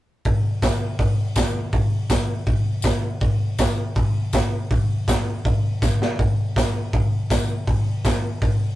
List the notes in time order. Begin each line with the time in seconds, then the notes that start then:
0.25 kick, open hi-hat
0.62 kick, snare, open hi-hat, tambourine
0.99 kick, open hi-hat
1.36 kick, snare, open hi-hat, tambourine
1.72 kick, open hi-hat
2.09 kick, snare, open hi-hat, tambourine
2.46 kick, open hi-hat
2.82 kick, snare, open hi-hat, tambourine
3.20 kick, open hi-hat
3.58 kick, snare, open hi-hat, tambourine
3.95 kick, open hi-hat
4.33 kick, snare, open hi-hat, tambourine
4.71 kick, open hi-hat
5.08 kick, snare, open hi-hat, tambourine
5.45 kick, open hi-hat
5.82 kick, snare, tambourine
6.02 snare
6.19 kick, open hi-hat
6.56 kick, snare, open hi-hat, tambourine
6.93 kick, open hi-hat
7.30 kick, snare, open hi-hat, tambourine
7.67 kick, open hi-hat
8.05 kick, snare, open hi-hat, tambourine
8.42 kick, open hi-hat